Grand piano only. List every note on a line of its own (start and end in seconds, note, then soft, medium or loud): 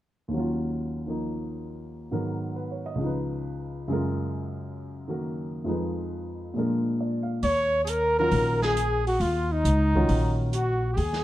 0.28 2.08 D#2 soft
0.28 1.05 D#3 soft
0.34 2.11 F#3 soft
0.34 2.12 C#4 soft
0.39 2.14 F4 soft
1.07 2.10 D#3 soft
1.07 2.11 F3 soft
1.07 2.11 A#3 soft
1.07 2.12 D#4 soft
2.11 3.00 G#2 soft
2.11 3.00 D#3 soft
2.11 3.00 F#3 soft
2.11 3.01 B3 soft
2.11 3.01 A#4 soft
2.56 2.84 B4 soft
2.71 2.94 C#5 soft
2.86 3.09 D#5 soft
2.95 3.86 C#2 soft
2.95 3.87 C#3 soft
3.01 3.89 F3 soft
3.01 3.90 D#4 soft
3.06 3.92 B4 soft
3.88 5.66 F#2 soft
3.88 5.66 C#3 soft
3.88 5.65 G#3 soft
3.88 5.67 F4 soft
3.93 5.09 A#4 medium
5.08 5.66 D#3 soft
5.08 5.67 A#3 soft
5.08 5.67 F#4 soft
5.08 5.68 A#4 soft
5.64 6.54 F2 soft
5.64 6.53 F3 soft
5.64 6.55 G#3 soft
5.64 6.56 D#4 soft
5.69 6.56 B4 soft
6.54 7.43 A#2 soft
6.54 7.43 F3 soft
6.54 7.44 G#3 soft
6.54 7.45 D4 soft
6.59 7.45 A#4 soft
7.00 7.34 D5 soft
7.23 7.53 F5 soft
8.19 8.74 D#3 medium
8.19 8.75 F#3 medium
8.19 8.75 C#4 medium
8.19 8.75 F4 medium
9.95 10.51 D#3 medium
9.95 10.51 F#3 medium
9.95 10.51 C#4 medium
9.95 10.51 F4 medium